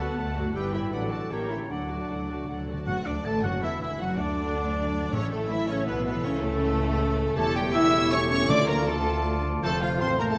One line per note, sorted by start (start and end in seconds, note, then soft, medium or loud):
0.00 0.13 D2 medium
0.00 0.48 D3 medium
0.00 0.18 F#3 soft
0.00 0.50 A3 soft
0.00 0.16 B3 medium
0.00 0.18 F#4 soft
0.00 0.52 F#4 soft
0.00 0.18 A4 medium
0.00 0.52 A4 soft
0.00 0.55 D5 soft
0.00 0.18 D5 soft
0.00 0.17 F#5 medium
0.00 0.55 F#5 medium
0.00 0.17 A5 medium
0.00 0.55 A5 medium
0.17 0.51 D2 medium
0.17 0.35 A3 medium
0.17 0.55 A3 medium
0.17 0.35 A4 soft
0.17 0.35 F#5 soft
0.17 0.35 A5 soft
0.36 0.86 G2 soft
0.36 0.55 F#3 soft
0.36 0.55 F#4 soft
0.36 0.55 D5 soft
0.36 0.55 F#5 medium
0.41 0.88 B3 soft
0.46 0.90 E4 soft
0.51 0.92 B4 soft
0.55 0.88 G1 medium
0.55 0.92 G3 medium
0.55 0.73 G3 medium
0.55 0.90 G3 medium
0.55 0.91 E4 soft
0.55 0.75 G4 medium
0.55 0.73 B4 medium
0.55 0.95 E5 soft
0.55 0.73 G5 medium
0.55 0.95 G5 medium
0.73 1.12 A2 soft
0.73 0.93 E3 soft
0.73 0.94 E4 medium
0.73 0.93 G4 soft
0.73 0.82 E5 soft
0.73 0.93 E5 soft
0.73 0.93 B5 soft
0.80 1.26 D4 soft
0.84 1.29 F#4 soft
0.89 1.27 A1 medium
0.89 1.11 F#3 soft
0.89 1.65 A4 soft
0.89 1.11 A4 soft
0.89 1.13 B4 medium
0.89 1.11 F#5 soft
0.93 1.31 F#3 medium
0.93 1.12 F#3 soft
0.93 1.31 D4 soft
0.93 1.33 D5 soft
0.93 1.34 F#5 soft
0.93 1.01 B5 medium
1.11 1.63 A2 soft
1.11 1.21 G3 soft
1.11 1.31 A3 soft
1.11 1.31 F#4 soft
1.11 1.32 A4 medium
1.11 1.31 D5 soft
1.11 1.31 A5 soft
1.18 1.65 C#4 soft
1.23 1.68 E4 soft
1.27 1.66 A1 soft
1.27 1.69 E3 soft
1.27 1.69 A#3 soft
1.27 1.70 C#4 soft
1.27 1.52 G4 medium
1.27 1.49 A4 soft
1.27 1.70 A#4 soft
1.27 1.49 E5 soft
1.27 1.51 G5 medium
1.31 1.50 A#3 soft
1.31 1.50 A#4 soft
1.31 1.72 C#5 soft
1.31 1.73 A#5 soft
1.50 2.80 D3 soft
1.50 1.70 A3 soft
1.50 1.69 E4 medium
1.50 1.69 A4 soft
1.50 1.70 C#5 soft
1.50 1.58 E5 soft
1.50 1.70 G5 soft
1.58 3.04 D4 soft
1.66 2.68 F#3 soft
1.66 2.66 D4 medium
1.66 2.68 D4 soft
1.66 3.14 A4 soft
1.66 2.66 D5 soft
1.70 2.05 D2 medium
1.70 1.77 D3 soft
1.70 1.88 F#3 soft
1.70 1.88 A4 soft
1.70 2.68 D5 soft
1.70 1.89 F#5 soft
1.70 2.65 F#5 soft
1.78 1.84 D3 soft
1.86 1.91 D3 soft
1.86 2.09 D5 soft
1.90 1.99 D3 soft
1.90 2.10 A3 soft
1.90 2.10 F#4 soft
1.90 2.09 A5 soft
2.08 2.44 D2 soft
2.08 2.13 D3 soft
2.08 2.29 F#3 soft
2.08 2.29 A4 soft
2.08 2.29 F#5 soft
2.15 2.21 D3 soft
2.22 2.28 D3 soft
2.29 2.49 A3 soft
2.29 2.49 F#4 soft
2.29 2.48 D5 soft
2.29 2.49 A5 soft
2.37 2.43 D3 soft
2.44 2.51 D3 soft
2.48 2.83 D2 soft
2.48 2.58 D3 soft
2.48 2.67 F#3 soft
2.48 2.67 A4 soft
2.48 2.67 F#5 soft
2.59 2.65 D3 medium
2.66 2.73 D3 medium
2.66 2.87 A3 soft
2.66 2.86 F#4 soft
2.66 2.88 D5 soft
2.66 2.88 A5 soft
2.74 2.80 D3 medium
2.86 2.94 F#1 medium
2.86 2.95 F#2 medium
2.86 4.02 D3 medium
2.86 3.41 D3 medium
2.86 3.05 F#3 medium
2.86 3.05 F#4 medium
2.86 2.96 F#4 medium
2.86 3.04 F#5 medium
2.86 3.07 F#5 medium
2.86 3.05 F#5 medium
2.96 3.71 A3 soft
3.05 3.25 D2 medium
3.05 3.14 D3 medium
3.05 3.25 D3 medium
3.05 3.80 D4 soft
3.05 3.15 D4 medium
3.05 3.14 D4 medium
3.05 3.26 D4 medium
3.05 3.25 D5 medium
3.05 3.27 D5 medium
3.05 3.26 D5 medium
3.15 4.27 A4 soft
3.23 3.44 A1 medium
3.23 3.44 A2 medium
3.23 3.43 A3 medium
3.23 3.44 A4 medium
3.23 3.33 A4 medium
3.23 3.51 D5 soft
3.23 3.44 A5 medium
3.23 3.43 A5 medium
3.23 3.44 A5 medium
3.34 4.46 F#5 soft
3.42 3.63 F#1 medium
3.42 3.63 F#2 medium
3.42 3.62 F#3 medium
3.42 3.53 F#4 medium
3.42 3.63 F#4 medium
3.42 3.53 F#4 medium
3.42 3.62 F#5 medium
3.42 3.66 F#5 medium
3.42 4.55 A5 soft
3.61 3.80 E1 medium
3.61 3.80 E2 medium
3.61 3.80 E3 medium
3.61 3.81 E4 medium
3.61 3.72 E4 medium
3.61 4.74 F#4 soft
3.61 3.81 E5 medium
3.61 3.82 E5 medium
3.61 3.83 E5 medium
3.72 3.90 A3 soft
3.81 3.89 E1 medium
3.81 3.89 E2 medium
3.81 4.00 E3 medium
3.81 4.18 D4 soft
3.81 3.90 E4 medium
3.81 4.00 E4 medium
3.81 3.89 E4 medium
3.81 4.00 E5 medium
3.81 3.91 E5 medium
3.81 4.03 E5 medium
3.91 5.31 A3 soft
3.99 4.19 F#1 medium
3.99 4.19 F#2 medium
3.99 5.14 F#2 medium
3.99 4.19 F#3 medium
3.99 4.19 F#4 medium
3.99 4.20 F#4 medium
3.99 4.19 F#5 medium
3.99 4.22 F#5 medium
4.10 4.83 F#3 soft
4.17 5.13 D2 medium
4.17 5.12 D3 medium
4.17 5.11 D3 medium
4.17 5.12 D4 medium
4.17 5.11 D4 medium
4.17 4.93 D4 soft
4.17 5.13 D4 medium
4.17 5.11 D5 medium
4.17 5.15 D5 medium
4.29 5.40 A4 soft
4.47 5.15 F#5 medium
4.56 5.68 A5 medium
4.75 5.14 F#4 medium
4.84 5.02 F#3 medium
5.03 5.14 F#3 medium
5.12 5.83 A1 medium
5.12 5.83 A2 medium
5.12 6.26 A2 medium
5.12 5.65 A2 medium
5.12 5.21 C#3 medium
5.12 7.32 E3 medium
5.12 7.32 A3 medium
5.12 5.21 C#4 medium
5.12 5.32 C#4 medium
5.12 7.32 A4 medium
5.12 5.31 C#5 medium
5.12 5.34 C#5 medium
5.12 7.33 E5 medium
5.22 5.95 E3 medium
5.30 5.40 A2 medium
5.30 5.50 A3 medium
5.30 6.04 A3 medium
5.30 5.49 A4 medium
5.30 5.52 A4 medium
5.41 5.77 A4 medium
5.49 5.58 E3 medium
5.49 5.68 E4 medium
5.49 5.69 E4 medium
5.49 5.86 E4 medium
5.49 5.68 E5 medium
5.49 5.69 E5 medium
5.68 5.78 C#3 medium
5.68 5.87 C#4 medium
5.68 5.87 C#5 medium
5.68 6.79 A5 medium
5.78 6.51 A4 medium
5.86 6.24 B1 medium
5.86 6.24 B2 medium
5.86 5.95 B2 medium
5.86 6.04 B3 medium
5.86 6.05 B3 medium
5.86 6.60 E4 medium
5.86 6.05 B4 medium
5.96 6.13 E3 medium
6.05 6.13 B2 medium
6.05 6.42 A3 medium
6.05 6.24 B3 medium
6.05 6.13 B3 medium
6.05 6.11 B4 medium
6.05 6.24 B4 medium
6.15 6.26 E3 medium
6.24 7.36 C#2 medium
6.24 7.37 C#3 medium
6.24 7.38 C#3 medium
6.24 6.43 C#3 medium
6.24 6.32 C#4 medium
6.24 6.43 C#4 medium
6.24 6.43 C#5 medium
6.24 6.31 C#5 medium
6.33 7.07 C#4 medium
6.43 7.37 A2 medium
6.43 7.17 A3 medium
6.43 7.35 A3 medium
6.43 7.37 A3 medium
6.43 7.36 A4 loud
6.43 7.11 A4 medium
6.52 6.88 A4 medium
6.61 6.98 E4 medium
6.71 8.51 E5 medium
6.80 10.38 A5 medium
6.89 7.73 A4 medium
6.99 7.45 E4 medium
7.08 7.26 C#4 medium
7.18 7.54 A3 medium
7.27 8.51 C#4 medium
7.35 8.47 E1 medium
7.35 8.47 E2 medium
7.35 8.51 E3 medium
7.35 8.47 G3 medium
7.35 9.45 A3 medium
7.35 7.45 A3 loud
7.35 7.71 G4 medium
7.35 7.55 A4 loud
7.35 7.56 A4 loud
7.35 7.72 C#5 medium
7.35 7.57 A5 medium
7.35 7.55 A5 loud
7.46 8.20 E4 medium
7.55 7.64 G3 medium
7.55 8.29 A3 medium
7.55 7.74 G4 medium
7.55 7.73 G5 medium
7.55 7.74 G5 loud
7.65 8.51 C#5 medium
7.73 8.11 E4 loud
7.73 8.11 G4 medium
7.73 8.01 A4 medium
7.73 8.10 C#5 medium
7.73 8.11 E5 loud
7.73 8.11 E6 loud
7.73 8.12 E6 loud
7.84 8.51 G5 medium
7.93 8.51 C#6 medium
8.02 8.86 A4 medium
8.11 8.20 C#4 medium
8.11 8.51 G4 medium
8.11 8.29 C#5 loud
8.11 8.19 C#5 loud
8.11 8.51 C#5 medium
8.11 8.30 C#6 loud
8.11 8.29 C#6 loud
8.21 8.39 E4 medium
8.30 8.67 A3 medium
8.30 8.49 C#4 loud
8.30 8.49 C#5 loud
8.30 8.49 C#5 medium
8.30 8.49 C#6 loud
8.30 8.48 C#6 medium
8.40 8.51 E4 medium
8.49 9.63 D2 medium
8.49 9.65 D3 medium
8.49 9.02 D3 medium
8.49 10.38 F3 medium
8.49 8.57 D4 loud
8.49 8.86 F4 medium
8.49 8.68 D5 loud
8.49 8.87 D5 medium
8.49 8.57 D5 loud
8.49 8.67 D6 loud
8.49 8.68 D6 loud
8.59 9.32 D4 medium
8.67 9.42 A3 medium
8.67 8.87 A#3 medium
8.67 8.87 A#4 loud
8.67 8.87 A#4 medium
8.67 8.74 A#5 medium
8.67 8.87 A#5 loud
8.86 9.43 A3 medium
8.86 9.61 F4 medium
8.86 9.14 A4 medium
8.86 9.43 A4 medium
8.86 9.44 A4 medium
8.86 9.64 D5 medium
8.86 9.43 A5 medium
8.86 9.44 A5 medium
8.96 10.09 F5 medium
9.15 10.00 A4 medium
9.25 10.38 F4 medium
9.34 9.52 D4 medium
9.43 9.80 A3 medium
9.53 9.65 D4 medium
9.62 9.98 F1 medium
9.62 10.38 F2 medium
9.62 9.98 F2 medium
9.62 10.37 A3 medium
9.62 9.81 A3 loud
9.62 10.00 F4 medium
9.62 9.81 A4 loud
9.62 9.71 A4 medium
9.62 10.01 C5 medium
9.62 9.83 A5 loud
9.62 9.81 A5 loud
9.72 10.38 C3 medium
9.81 10.01 F3 medium
9.81 10.38 A3 medium
9.81 10.01 F4 medium
9.81 9.90 F4 medium
9.81 10.02 F5 medium
9.81 10.01 F5 medium
9.91 10.38 C5 medium
10.00 10.38 A1 medium
10.00 10.38 A2 medium
10.00 10.20 C4 medium
10.00 10.38 F4 medium
10.00 10.28 A4 medium
10.00 10.19 C5 medium
10.00 10.20 C5 loud
10.00 10.38 C5 medium
10.00 10.21 C6 loud
10.00 10.08 C6 loud
10.10 10.38 F5 medium
10.19 10.24 A#3 medium
10.19 10.29 A#4 medium
10.19 10.24 A#4 medium
10.19 10.29 A#5 medium
10.19 10.24 A#5 medium
10.29 10.34 A3 medium
10.29 10.38 A4 medium
10.29 10.34 A4 medium
10.29 10.38 A5 medium